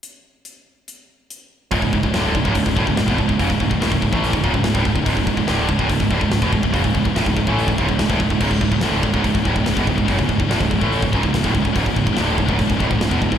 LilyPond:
<<
  \new Staff \with { instrumentName = "Distorted electric guitar" } { \clef bass \time 4/4 \key cis \phrygian \tempo 4 = 143 r1 | <cis, gis,>16 <cis, gis,>16 <cis, gis,>16 <cis, gis,>16 <d, a, d>8 <cis, gis,>16 <cis, gis,>16 <cis, gis,>16 <cis, gis,>16 <d, a,>16 <cis, gis,>16 <cis, gis,>16 <e, b,>16 <cis, gis,>16 <cis, gis,>16 | <fis, cis>16 <cis, gis,>16 <cis, gis,>16 <cis, gis,>16 <d, a,>16 <cis, gis,>16 <cis, gis,>16 <a, e a>8 <cis, gis,>16 <cis, gis,>16 <cis, gis,>16 <cis, gis,>16 <d, a,>16 <cis, gis,>16 <cis, gis,>16 | <cis, gis,>16 <cis, gis,>16 <cis, gis,>16 <cis, gis,>16 <d, a, d>8 <cis, gis,>16 <cis, gis,>16 <cis, gis,>16 <cis, gis,>16 <d, a,>16 <cis, gis,>16 <cis, gis,>16 <e, b,>16 <cis, gis,>16 <cis, gis,>16 |
<fis, cis>16 <cis, gis,>16 <cis, gis,>16 <cis, gis,>16 <d, a,>16 <cis, gis,>16 <cis, gis,>16 <a, e a>8 <cis, gis,>16 <cis, gis,>16 <cis, gis,>16 <cis, gis,>16 <d, a,>16 <cis, gis,>16 <cis, gis,>16 | <cis, gis,>16 <cis, gis,>16 <cis, gis,>16 <cis, gis,>16 <d, a, d>8 <cis, gis,>16 <cis, gis,>16 <cis, gis,>16 <cis, gis,>16 <d, a,>16 <cis, gis,>16 <cis, gis,>16 <e, b,>16 <cis, gis,>16 <cis, gis,>16 | <fis, cis>16 <cis, gis,>16 <cis, gis,>16 <cis, gis,>16 <d, a,>16 <cis, gis,>16 <cis, gis,>16 <a, e a>8 <cis, gis,>16 <cis, gis,>16 <cis, gis,>16 <cis, gis,>16 <d, a,>16 <cis, gis,>16 <cis, gis,>16 | <cis, gis,>16 <cis, gis,>16 <cis, gis,>16 <cis, gis,>16 <d, a, d>8 <cis, gis,>16 <cis, gis,>16 <cis, gis,>16 <cis, gis,>16 <d, a,>16 <cis, gis,>16 <cis, gis,>16 <e, b,>16 <cis, gis,>16 <cis, gis,>16 | }
  \new Staff \with { instrumentName = "Distorted electric guitar" } { \clef bass \time 4/4 \key cis \phrygian r1 | <cis, gis,>16 <cis, gis,>16 <cis, gis,>16 <cis, gis,>16 <d, a, d>8 <cis, gis,>16 <cis, gis,>16 <cis, gis,>16 <cis, gis,>16 <d, a,>16 <cis, gis,>16 <cis, gis,>16 <e, b,>16 <cis, gis,>16 <cis, gis,>16 | <fis, cis>16 <cis, gis,>16 <cis, gis,>16 <cis, gis,>16 <d, a,>16 <cis, gis,>16 <cis, gis,>16 <a, e a>8 <cis, gis,>16 <cis, gis,>16 <cis, gis,>16 <cis, gis,>16 <d, a,>16 <cis, gis,>16 <cis, gis,>16 | <cis, gis,>16 <cis, gis,>16 <cis, gis,>16 <cis, gis,>16 <d, a, d>8 <cis, gis,>16 <cis, gis,>16 <cis, gis,>16 <cis, gis,>16 <d, a,>16 <cis, gis,>16 <cis, gis,>16 <e, b,>16 <cis, gis,>16 <cis, gis,>16 |
<fis, cis>16 <cis, gis,>16 <cis, gis,>16 <cis, gis,>16 <d, a,>16 <cis, gis,>16 <cis, gis,>16 <a, e a>8 <cis, gis,>16 <cis, gis,>16 <cis, gis,>16 <cis, gis,>16 <d, a,>16 <cis, gis,>16 <cis, gis,>16 | <cis, gis,>16 <cis, gis,>16 <cis, gis,>16 <cis, gis,>16 <d, a, d>8 <cis, gis,>16 <cis, gis,>16 <cis, gis,>16 <cis, gis,>16 <d, a,>16 <cis, gis,>16 <cis, gis,>16 <e, b,>16 <cis, gis,>16 <cis, gis,>16 | <fis, cis>16 <cis, gis,>16 <cis, gis,>16 <cis, gis,>16 <d, a,>16 <cis, gis,>16 <cis, gis,>16 <a, e a>8 <cis, gis,>16 <cis, gis,>16 <cis, gis,>16 <cis, gis,>16 <d, a,>16 <cis, gis,>16 <cis, gis,>16 | <cis, gis,>16 <cis, gis,>16 <cis, gis,>16 <cis, gis,>16 <d, a, d>8 <cis, gis,>16 <cis, gis,>16 <cis, gis,>16 <cis, gis,>16 <d, a,>16 <cis, gis,>16 <cis, gis,>16 <e, b,>16 <cis, gis,>16 <cis, gis,>16 | }
  \new Staff \with { instrumentName = "Picked electric bass" } { \clef bass \time 4/4 \key cis \phrygian r1 | cis,,16 cis,,16 cis,,16 cis,,16 d,,8 cis,,16 cis,,16 cis,,16 cis,,16 d,,16 cis,,16 cis,,16 e,,16 cis,,16 cis,,16 | fis,,16 cis,,16 cis,,16 cis,,16 d,,16 cis,,16 cis,,16 a,,8 cis,,16 cis,,16 cis,,16 cis,,16 d,,16 cis,,16 cis,,16 | cis,,16 cis,,16 cis,,16 cis,,16 d,,8 cis,,16 cis,,16 cis,,16 cis,,16 d,,16 cis,,16 cis,,16 e,,16 cis,,16 cis,,16 |
fis,,16 cis,,16 cis,,16 cis,,16 d,,16 cis,,16 cis,,16 a,,8 cis,,16 cis,,16 cis,,16 cis,,16 d,,16 cis,,16 cis,,16 | cis,,16 cis,,16 cis,,16 cis,,16 d,,8 cis,,16 cis,,16 cis,,16 cis,,16 d,,16 cis,,16 cis,,16 e,,16 cis,,16 cis,,16 | fis,,16 cis,,16 cis,,16 cis,,16 d,,16 cis,,16 cis,,16 a,,8 cis,,16 cis,,16 cis,,16 cis,,16 d,,16 cis,,16 cis,,16 | cis,,16 cis,,16 cis,,16 cis,,16 d,,8 cis,,16 cis,,16 cis,,16 cis,,16 d,,16 cis,,16 cis,,16 e,,16 cis,,16 cis,,16 | }
  \new DrumStaff \with { instrumentName = "Drums" } \drummode { \time 4/4 hh4 hh4 hh4 hh4 | <hho bd>16 bd16 bd16 bd16 <hho sn>8 bd16 bd16 <hho bd>16 bd16 bd16 bd16 <hho sn>16 bd16 bd16 bd16 | <hho bd>16 bd16 bd16 bd16 <hho sn>16 bd16 bd16 bd16 hho16 bd16 bd16 bd16 <hho sn>16 bd16 bd16 bd16 | <hho bd>16 bd16 bd16 bd16 <hho sn>8 bd16 bd16 <hho bd>16 bd16 bd16 bd16 <hho sn>16 bd16 bd16 bd16 |
<hho bd>16 bd16 bd16 bd16 <hho sn>16 bd16 bd16 bd16 hho16 bd16 bd16 bd16 <hho sn>16 bd16 bd16 bd16 | <cymc bd>16 bd16 bd16 bd16 <hho sn>8 bd16 bd16 <hho bd>16 bd16 bd16 bd16 <hho sn>16 bd16 bd16 bd16 | <hho bd>16 bd16 bd16 bd16 <hho sn>16 bd16 bd16 bd16 hho16 bd16 bd16 bd16 <hho sn>16 bd16 bd16 bd16 | <hho bd>16 bd16 bd16 bd16 <hho sn>8 bd16 bd16 <hho bd>16 bd16 bd16 bd16 <hho sn>16 bd16 bd16 bd16 | }
>>